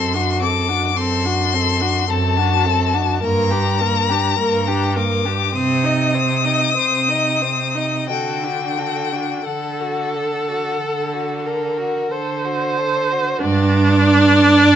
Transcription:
0.00 0.85 F#2 medium
0.00 0.15 C4 medium
0.00 0.16 A4 medium
0.00 0.39 C6 loud
0.14 0.42 D4 medium
0.14 0.44 F#4 medium
0.41 0.70 C4 soft
0.41 0.71 A4 medium
0.41 0.98 D6 medium
0.69 0.97 D4 soft
0.69 0.97 F#4 soft
0.96 1.97 F#2 medium
0.96 1.27 C4 medium
0.96 1.27 A4 medium
0.96 2.11 C6 loud
1.26 1.55 D4 medium
1.26 1.55 F#4 medium
1.53 1.83 C4 medium
1.53 1.83 A4 medium
1.81 2.09 D4 medium
1.81 2.08 F#4 medium
2.09 3.09 F#2 medium
2.09 2.39 C4 medium
2.09 2.38 A4 medium
2.09 3.25 A5 loud
2.37 2.67 D4 medium
2.37 2.67 F#4 medium
2.65 2.96 C4 medium
2.65 2.95 A4 medium
2.93 3.23 D4 medium
2.93 3.21 F#4 medium
3.22 4.26 G2 medium
3.22 3.53 A#3 medium
3.22 3.52 A#4 medium
3.22 4.96 A#5 loud
3.51 3.83 D4 medium
3.51 3.81 G4 medium
3.80 4.12 A#3 medium
3.80 4.11 A#4 medium
4.09 4.38 D4 medium
4.09 4.38 G4 medium
4.38 5.42 G2 medium
4.38 4.69 A#3 medium
4.38 4.69 A#4 medium
4.67 4.98 D4 medium
4.67 4.98 G4 medium
4.96 5.27 A#3 medium
4.96 5.27 A#4 medium
4.96 5.57 D6 medium
5.25 5.54 D4 soft
5.25 5.54 G4 soft
5.54 6.62 C3 medium
5.54 5.86 C4 medium
5.54 5.87 C5 medium
5.54 8.09 D#6 loud
5.84 6.16 D#4 medium
5.84 6.16 D#5 medium
6.14 6.46 C4 soft
6.14 6.47 C5 soft
6.45 6.76 D#4 soft
6.45 6.76 D#5 soft
6.76 7.94 C3 medium
6.76 7.10 C4 soft
6.76 7.11 C5 medium
7.09 7.43 D#4 soft
7.09 7.43 D#5 soft
7.41 7.76 C4 soft
7.41 7.78 C5 soft
7.75 8.09 D#4 soft
7.75 8.10 D#5 soft
8.09 9.31 D3 medium
8.09 8.45 F#4 soft
8.09 8.46 A4 soft
8.09 9.48 G5 medium
8.43 8.80 D4 soft
8.43 8.80 F#4 soft
8.78 9.14 F#4 soft
8.78 9.14 A4 soft
9.13 9.46 D4 soft
9.13 9.46 F#4 soft
9.46 10.64 D3 medium
9.46 11.47 A4 medium
9.46 9.82 A4 soft
9.46 12.11 F#5 medium
9.80 10.16 F#4 soft
10.14 10.49 A4 soft
10.48 10.80 F#4 soft
10.79 11.95 D3 medium
10.79 11.15 A4 soft
11.13 11.48 F#4 soft
11.46 11.79 A4 soft
11.46 12.13 A#4 soft
11.78 12.11 F#4 soft
12.11 13.27 D3 medium
12.11 12.47 A4 soft
12.11 13.41 C5 medium
12.45 12.79 F#4 soft
12.77 13.13 A4 soft
13.11 13.42 F#4 soft
13.41 14.47 G2 medium
13.41 14.76 D4 loud
13.41 14.76 D5 loud
14.01 14.76 D5 medium
14.62 14.76 G2 medium

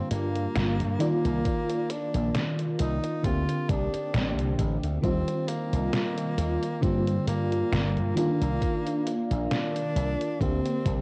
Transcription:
0.00 0.91 D3 medium
0.00 0.92 G3 medium
0.00 0.92 A#3 medium
0.00 0.10 C4 loud
0.00 0.99 D4 medium
0.00 0.93 F4 medium
0.00 0.99 G4 medium
0.00 4.99 A#4 medium
0.00 3.20 F5 medium
0.11 0.46 G2 loud
0.11 0.96 A#3 loud
0.11 closed hi-hat medium
0.35 closed hi-hat soft
0.55 0.81 G1 medium
0.55 snare loud
0.55 closed hi-hat medium
0.80 0.95 G2 medium
0.80 closed hi-hat soft
0.99 3.15 D#3 medium
0.99 3.22 D#3 medium
0.99 3.16 A#3 medium
0.99 1.92 A#3 loud
0.99 3.17 F4 loud
0.99 3.22 D5 medium
0.99 3.16 D5 medium
0.99 closed hi-hat medium
1.25 1.40 C2 medium
1.25 closed hi-hat soft
1.45 kick loud
1.45 closed hi-hat medium
1.70 closed hi-hat soft
1.90 2.55 D4 loud
1.90 closed hi-hat medium
2.14 2.30 A#1 medium
2.14 closed hi-hat soft
2.35 snare loud
2.35 closed hi-hat medium
2.59 closed hi-hat soft
2.79 2.98 C2 medium
2.79 3.27 D#4 loud
2.79 closed hi-hat medium
3.04 closed hi-hat soft
3.23 3.43 D2 medium
3.23 4.94 D3 medium
3.23 4.95 A#3 medium
3.23 4.95 C4 medium
3.23 5.01 D4 medium
3.23 3.71 F4 loud
3.23 4.96 G4 medium
3.23 6.79 C5 medium
3.23 8.13 G5 medium
3.23 kick loud
3.23 closed hi-hat medium
3.49 closed hi-hat soft
3.69 3.87 C2 loud
3.69 4.59 D4 loud
3.69 kick loud
3.69 closed hi-hat medium
3.94 muted slap bass stroke soft
3.94 closed hi-hat soft
4.14 4.32 A1 medium
4.14 snare loud
4.14 closed hi-hat medium
4.38 4.54 C2 loud
4.38 closed hi-hat soft
4.59 4.77 A1 medium
4.59 kick medium
4.59 closed hi-hat medium
4.83 4.98 D2 medium
4.83 closed hi-hat soft
5.02 5.22 D#2 medium
5.02 6.74 D#3 medium
5.02 6.74 G3 medium
5.02 5.49 C4 loud
5.02 6.75 C4 medium
5.02 8.14 F4 medium
5.02 6.75 F4 medium
5.02 6.81 D#5 medium
5.02 kick loud
5.02 closed hi-hat medium
5.28 closed hi-hat soft
5.48 6.84 A#3 loud
5.48 closed hi-hat medium
5.73 5.88 C2 medium
5.73 closed hi-hat soft
5.93 snare loud
5.93 closed hi-hat medium
6.18 closed hi-hat soft
6.38 6.56 D#2 medium
6.38 closed hi-hat loud
6.63 closed hi-hat soft
6.81 7.17 G2 medium
6.81 8.08 D3 medium
6.81 8.08 G3 medium
6.81 8.09 A#3 medium
6.81 7.27 C4 loud
6.81 8.09 F4 medium
6.81 8.15 A#4 medium
6.81 8.16 D5 medium
6.81 kick loud
6.81 closed hi-hat medium
7.07 closed hi-hat soft
7.27 7.62 G2 loud
7.27 8.13 A#3 loud
7.27 closed hi-hat medium
7.52 closed hi-hat soft
7.72 7.98 G1 medium
7.72 snare loud
7.72 closed hi-hat medium
7.97 8.12 G2 medium
7.97 closed hi-hat soft
8.15 10.32 D#3 medium
8.15 10.38 D#3 medium
8.15 10.32 A#3 medium
8.15 9.22 A#3 loud
8.15 10.33 D4 medium
8.15 10.33 F4 loud
8.15 11.02 A#4 medium
8.15 10.38 D5 medium
8.15 10.38 F5 medium
8.15 closed hi-hat medium
8.41 8.57 C2 loud
8.41 closed hi-hat soft
8.62 kick loud
8.62 closed hi-hat medium
8.87 closed hi-hat soft
9.07 closed hi-hat medium
9.31 9.46 A#1 medium
9.31 closed hi-hat soft
9.51 10.42 D4 loud
9.51 snare loud
9.51 closed hi-hat medium
9.76 closed hi-hat soft
9.96 10.14 C2 medium
9.96 closed hi-hat medium
10.21 closed hi-hat soft
10.39 10.59 D2 medium
10.39 11.02 D3 medium
10.39 11.02 A#3 medium
10.39 11.02 C4 loud
10.39 11.02 C4 medium
10.39 11.02 D4 medium
10.39 11.02 G4 medium
10.39 11.02 C5 medium
10.39 11.02 G5 medium
10.39 kick loud
10.39 closed hi-hat medium
10.65 closed hi-hat soft
10.85 11.02 C2 loud
10.85 kick loud
10.85 closed hi-hat medium

